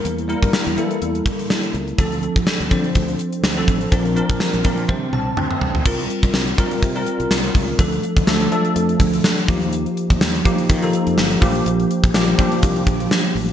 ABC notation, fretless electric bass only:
X:1
M:4/4
L:1/16
Q:"Swing 16ths" 1/4=124
K:Dm
V:1 name="Fretless electric bass" clef=bass
E,,3 G,, z E,, E,2 E,,2 z4 ^C,,2 | D,,3 F,, z D,, D,2 D,,2 z2 D,,2 A,,,2 | B,,,3 B,,, z B,,, B,,2 C,2 C,,2 D,, z C,, D,, | [K:Cdor] C,,2 z C,, C,,2 z2 C,2 z C,, C,,2 ^C,,2 |
D,,2 z D,, D,,2 z2 F,,2 D,,2 z2 E,,2- | E,,2 z E,, E,,2 z2 E,2 z F,, G,,,2 B,,,2 | B,,,2 z B,,, B,,,2 z2 C,,2 B,,,2 z2 A,,,2 |]